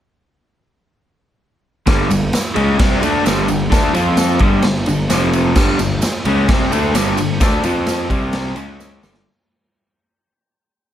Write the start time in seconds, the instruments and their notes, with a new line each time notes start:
1.86 picked electric bass G1, overdriven electric guitar G2 D3 G3, kick, snare, ride, tambourine
2.09 picked electric bass G1, overdriven electric guitar G2 D3, ride, tambourine
2.33 snare, ride, tambourine
2.55 picked electric bass C#2, overdriven electric guitar C#3 G#3 C#4, ride
2.78 picked electric bass C2, overdriven electric guitar C3 G3 C4, kick, snare, ride
3.01 picked electric bass D2, overdriven electric guitar D3 A3 D4, ride, tambourine
3.25 picked electric bass G1, overdriven electric guitar G2 D3 G3, snare, ride, tambourine
3.48 picked electric bass G1, overdriven electric guitar G2 D3, ride, tambourine
3.70 picked electric bass D2, overdriven electric guitar D3 A3 D4, kick, snare, ride, tambourine
3.93 picked electric bass F2, overdriven electric guitar F3 C4 F4, ride, tambourine
4.17 snare, ride, tambourine
4.39 picked electric bass G1, overdriven electric guitar G2 D3 G3, kick, ride
4.62 picked electric bass G1, overdriven electric guitar G2 D3, snare, ride
4.86 picked electric bass G1, overdriven electric guitar G2 D3, ride, tambourine
5.10 picked electric bass F1, overdriven electric guitar F2 C3 F3, snare, ride, tambourine
5.33 ride, tambourine
5.55 picked electric bass G1, overdriven electric guitar G2 D3 G3, kick, snare, crash, tambourine
5.79 picked electric bass G1, overdriven electric guitar G2 D3, ride, tambourine
6.02 snare, ride, tambourine
6.25 picked electric bass C#2, overdriven electric guitar C#3 G#3 C#4, ride
6.48 picked electric bass C2, overdriven electric guitar C3 G3 C4, kick, snare, ride
6.71 picked electric bass D2, overdriven electric guitar D3 A3 D4, ride, tambourine
6.94 picked electric bass G1, overdriven electric guitar G2 D3 G3, snare, ride, tambourine
7.17 picked electric bass G1, overdriven electric guitar G2 D3, ride, tambourine
7.41 picked electric bass D2, overdriven electric guitar D3 A3 D4, kick, snare, ride, tambourine
7.63 picked electric bass F2, overdriven electric guitar F3 C4 F4, ride, tambourine
7.86 snare, ride, tambourine
8.10 picked electric bass C2, overdriven electric guitar C3 G3 C4, kick, ride, tambourine
8.33 snare, ride, tambourine
8.56 picked electric bass C#2, overdriven electric guitar C#3 G#3 C#4, ride, tambourine
8.80 snare, tambourine
9.02 picked electric bass G1, overdriven electric guitar G2 D3 G3, snare, tambourine
9.14 snare